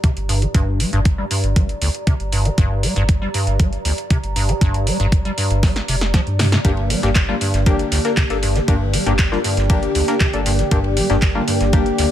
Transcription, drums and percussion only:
0.04 kick, closed hi-hat
0.17 closed hi-hat
0.29 open hi-hat
0.42 closed hi-hat
0.55 kick, closed hi-hat
0.80 open hi-hat
0.93 closed hi-hat
1.05 kick, closed hi-hat
1.31 open hi-hat
1.44 closed hi-hat
1.56 kick, closed hi-hat
1.69 closed hi-hat
1.82 open hi-hat
1.95 closed hi-hat
2.07 kick, closed hi-hat
2.20 closed hi-hat
2.32 open hi-hat
2.45 closed hi-hat
2.58 kick, closed hi-hat
2.83 open hi-hat
2.96 closed hi-hat
3.09 kick, closed hi-hat
3.34 open hi-hat
3.47 closed hi-hat
3.60 kick, closed hi-hat
3.73 closed hi-hat
3.85 open hi-hat
3.98 closed hi-hat
4.10 kick, closed hi-hat
4.24 closed hi-hat
4.36 open hi-hat
4.49 closed hi-hat
4.61 kick, closed hi-hat
4.74 closed hi-hat
4.87 open hi-hat
5.00 closed hi-hat
5.12 kick, closed hi-hat
5.25 closed hi-hat
5.38 open hi-hat
5.51 closed hi-hat
5.63 kick, snare, open hi-hat
5.76 snare, closed hi-hat
5.88 open hi-hat
6.01 snare, closed hi-hat
6.14 kick, snare, closed hi-hat
6.27 closed hi-hat
6.39 snare, open hi-hat
6.52 snare, closed hi-hat
6.65 kick, closed hi-hat, ride
6.77 ride
6.90 open hi-hat, ride
7.03 snare, closed hi-hat
7.16 kick, snare, clap, closed hi-hat, ride
7.41 open hi-hat, ride
7.54 snare, closed hi-hat
7.66 kick, closed hi-hat, ride
7.79 closed hi-hat
7.92 snare, open hi-hat, ride
8.05 snare, closed hi-hat
8.17 kick, snare, clap, closed hi-hat, ride
8.30 snare, closed hi-hat
8.43 open hi-hat, ride
8.55 snare, closed hi-hat
8.68 kick, closed hi-hat, ride
8.93 open hi-hat, ride
9.06 closed hi-hat
9.19 kick, snare, clap, closed hi-hat, ride
9.32 snare
9.44 open hi-hat, ride
9.57 snare, closed hi-hat
9.70 kick, closed hi-hat, ride
9.83 closed hi-hat
9.95 open hi-hat, ride
10.08 snare, closed hi-hat
10.20 kick, snare, clap, closed hi-hat, ride
10.33 closed hi-hat
10.46 snare, open hi-hat, ride
10.59 snare, closed hi-hat
10.71 kick, closed hi-hat, ride
10.84 ride
10.97 open hi-hat, ride
11.10 snare, closed hi-hat
11.22 kick, snare, clap, closed hi-hat, ride
11.48 open hi-hat, ride
11.61 snare, closed hi-hat
11.73 kick, closed hi-hat, ride
11.86 closed hi-hat
11.98 snare, open hi-hat, ride

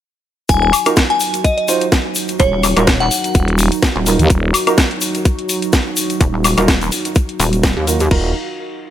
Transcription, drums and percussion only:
0.49 kick, closed hi-hat, shaker
0.73 open hi-hat, high woodblock, shaker
0.86 closed hi-hat, high woodblock, shaker
0.96 kick, snare, closed hi-hat, shaker
1.10 closed hi-hat
1.20 open hi-hat, shaker
1.34 closed hi-hat, shaker
1.44 kick, closed hi-hat, shaker
1.58 closed hi-hat
1.68 open hi-hat, shaker
1.81 closed hi-hat, shaker
1.92 kick, snare, closed hi-hat, shaker
2.15 open hi-hat, shaker
2.28 closed hi-hat, shaker
2.39 kick, closed hi-hat, shaker
2.63 open hi-hat, high woodblock, shaker
2.77 closed hi-hat, high woodblock, shaker
2.87 kick, snare, closed hi-hat, shaker
3.00 closed hi-hat
3.11 open hi-hat, shaker
3.24 closed hi-hat, shaker
3.34 kick, closed hi-hat, shaker
3.48 closed hi-hat
3.58 open hi-hat, shaker
3.72 closed hi-hat, shaker
3.82 kick, snare, closed hi-hat, shaker
4.06 open hi-hat, shaker
4.19 closed hi-hat, shaker
4.30 kick, closed hi-hat, shaker
4.54 open hi-hat, high woodblock, shaker
4.67 closed hi-hat, high woodblock, shaker
4.78 kick, snare, closed hi-hat, shaker
4.91 closed hi-hat
5.01 open hi-hat, shaker
5.14 closed hi-hat, shaker
5.25 kick, closed hi-hat, shaker
5.39 closed hi-hat
5.49 open hi-hat, shaker
5.62 closed hi-hat, shaker
5.73 kick, snare, closed hi-hat, shaker
5.97 open hi-hat, shaker
6.10 closed hi-hat, shaker
6.20 kick, closed hi-hat, shaker
6.44 open hi-hat, high woodblock, shaker
6.57 closed hi-hat, high woodblock, shaker
6.68 kick, snare, closed hi-hat, shaker
6.81 closed hi-hat, shaker
6.92 open hi-hat, shaker
7.05 closed hi-hat, shaker
7.15 kick, closed hi-hat, shaker
7.29 closed hi-hat
7.40 open hi-hat, shaker
7.53 closed hi-hat, shaker
7.63 kick, snare, closed hi-hat, shaker
7.87 open hi-hat, shaker
8.00 closed hi-hat, shaker
8.11 kick, crash

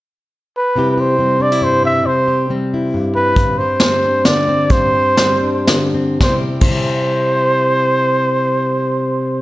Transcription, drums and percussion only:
3.36 kick, closed hi-hat
3.80 snare, closed hi-hat
4.25 snare, closed hi-hat
4.70 kick, closed hi-hat
5.17 snare, closed hi-hat
5.67 snare, closed hi-hat
6.21 kick, snare
6.61 kick, crash

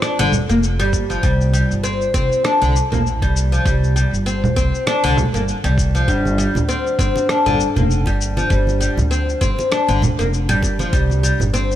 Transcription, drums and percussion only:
0.02 cross-stick, cabasa
0.20 cabasa
0.32 low conga, cabasa
0.50 cabasa
0.63 cabasa
0.80 cabasa
0.93 kick, cabasa
1.11 cabasa
1.23 kick, cabasa
1.41 cabasa
1.54 cabasa
1.71 cabasa
1.85 cabasa
2.01 cabasa
2.14 kick, cabasa
2.32 cabasa
2.45 cross-stick, cabasa
2.63 cabasa
2.76 cabasa
2.93 low conga, cabasa
3.07 cabasa
3.22 kick, cabasa
3.37 cabasa
3.54 cabasa
3.66 kick, cabasa
3.84 cabasa
3.97 cabasa
4.14 cabasa
4.27 cabasa
4.44 low conga, cabasa
4.57 kick, cabasa
4.75 cabasa
4.87 cross-stick, cabasa
5.05 cabasa
5.17 low conga, cabasa
5.35 cabasa
5.48 cabasa
5.65 cabasa
5.78 kick, cabasa
5.96 cabasa
6.08 kick, cabasa
6.25 high conga, cabasa
6.40 cabasa
6.55 high conga, low conga, cabasa
6.70 cabasa
6.87 cabasa
6.99 kick, cabasa
7.16 muted conga, cabasa
7.29 cross-stick, cabasa
7.46 low conga, cabasa
7.60 high conga, cabasa
7.76 muted conga, low conga, cabasa
7.91 cabasa
8.06 kick, muted conga, cabasa
8.21 cabasa
8.37 high conga, cabasa
8.50 kick, cabasa
8.67 high conga, cabasa
8.82 cabasa
8.98 high conga, low conga, cabasa
9.12 cabasa
9.29 cabasa
9.41 kick, cabasa
9.59 muted conga, cabasa
9.72 cross-stick, cabasa
9.90 cabasa
10.02 muted conga, low conga, cabasa
10.20 cabasa
10.34 cabasa
10.49 muted conga, low conga, cabasa
10.63 kick, muted conga, cabasa
10.79 high conga, cabasa
10.93 kick, cabasa
11.10 high conga, cabasa
11.24 cabasa
11.40 high conga, low conga, cabasa
11.55 cabasa
11.71 cabasa

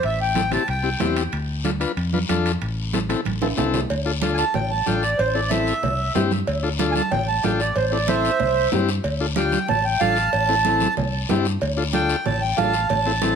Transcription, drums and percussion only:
0.03 high timbale, long guiro
0.35 high conga, high timbale, short guiro
0.52 low conga, high timbale, short guiro
0.68 high timbale, long guiro
1.00 high conga, low conga, high timbale, low timbale, short guiro
1.16 high timbale, short guiro
1.32 high timbale, long guiro
1.64 high conga, high timbale, short guiro
1.81 high timbale, short guiro
1.97 high timbale, long guiro
2.13 high conga
2.29 high conga, high timbale, short guiro
2.46 high timbale, short guiro
2.62 high timbale, long guiro
2.93 high conga, high timbale, short guiro
3.10 low conga, high timbale, short guiro
3.25 high conga, high timbale, long guiro
3.42 high conga, high timbale
3.57 low conga, high timbale, short guiro
3.74 low conga, low timbale, short guiro
3.90 cowbell, high conga, long guiro
4.22 cowbell, high conga, short guiro
4.38 short guiro
4.54 cowbell, low conga, long guiro
4.71 high conga
4.87 cowbell, high conga, short guiro
5.03 short guiro
5.19 cowbell, high conga, long guiro
5.51 cowbell, high conga, short guiro
5.67 short guiro
5.83 cowbell, low conga, long guiro
5.99 high conga
6.15 cowbell, high conga, low conga, low timbale, short guiro
6.31 high conga, short guiro
6.47 cowbell, high conga, long guiro
6.79 cowbell, high conga, short guiro
6.95 high conga, short guiro
7.11 cowbell, low conga, long guiro
7.28 high conga
7.44 cowbell, high conga, low timbale, short guiro
7.60 short guiro
7.76 cowbell, high conga, long guiro
8.08 cowbell, high conga, short guiro
8.25 short guiro
8.39 cowbell, low conga, long guiro
8.56 high conga
8.72 cowbell, high conga, low conga, low timbale, short guiro
8.89 short guiro
9.04 cowbell, high conga, long guiro
9.36 cowbell, high conga, short guiro
9.52 high conga, short guiro
9.68 cowbell, low conga, long guiro
9.85 high conga
10.00 cowbell, high conga, short guiro
10.17 short guiro
10.33 cowbell, high conga, long guiro
10.65 cowbell, high conga, short guiro
10.80 high conga, short guiro
10.97 cowbell, low conga, long guiro
11.13 high conga
11.29 cowbell, high conga, low conga, low timbale, short guiro
11.45 short guiro
11.61 cowbell, high conga, long guiro
11.93 cowbell, high conga, short guiro
12.09 short guiro
12.26 cowbell, low conga, long guiro
12.42 high conga
12.58 cowbell, high conga, low timbale, short guiro
12.74 short guiro
12.89 cowbell, high conga, low conga, long guiro
13.22 cowbell, high conga, short guiro

